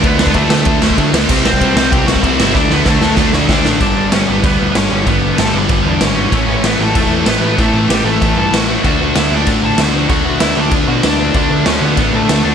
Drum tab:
CC |----------------|x---------------|----------------|x---x---x---x---|
RD |x---x---x---x---|----x---x---x---|----------------|----------------|
SD |--o---o---o---o-|--o---o---o---o-|o-o-o-o-o-o-o-o-|----o-------o---|
BD |o--oo---o--oo---|o--oo---o--oo---|o---o---o---o---|o-------o-------|

CC |x---x---x---x---|x---x---x---x---|x---x---x---x---|x---x---x---x---|
RD |----------------|----------------|----------------|----------------|
SD |----o-------o---|----o-------o---|----o-------o---|----o-------o---|
BD |o-------o-------|o-------o-------|o-------o-------|o-------o-------|

CC |x---x---x---x---|x---x---x---x---|
RD |----------------|----------------|
SD |----o-------o---|----o-------o---|
BD |o-------o-------|o-------o-------|